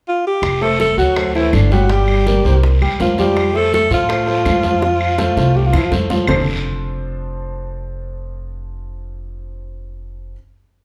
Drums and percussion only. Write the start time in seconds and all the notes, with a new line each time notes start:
0.43 high bongo, high conga, long guiro, claves
0.62 high bongo, high conga
0.80 high bongo, high conga, short guiro
0.98 high conga, short guiro
1.16 high bongo, high conga, long guiro, claves
1.35 high bongo, high conga
1.53 high bongo, low bongo, high conga, short guiro, claves
1.71 high bongo, high conga, short guiro
1.90 high bongo, high conga, long guiro
2.08 high bongo, high conga, claves
2.27 high bongo, high conga, short guiro
2.45 high conga, short guiro
2.63 high bongo, high conga, long guiro
2.82 high bongo, high conga, claves
3.00 high bongo, low bongo, high conga, short guiro
3.18 high bongo, high conga, short guiro
3.36 high bongo, high conga, long guiro, claves
3.55 high bongo, high conga
3.73 high bongo, high conga, short guiro
3.91 high conga, short guiro
4.09 high bongo, high conga, long guiro, claves
4.28 high bongo, high conga
4.45 high bongo, low bongo, high conga, short guiro, claves
4.63 high bongo, high conga, short guiro
4.82 high bongo, high conga, long guiro
5.01 high conga, claves
5.18 high bongo, high conga, short guiro
5.37 low bongo, high conga, short guiro
5.55 high conga, long guiro
5.73 low bongo, high conga, claves
5.92 low bongo, high conga, short guiro
6.10 low bongo, high conga, short guiro
6.27 low bongo, low conga, long guiro, claves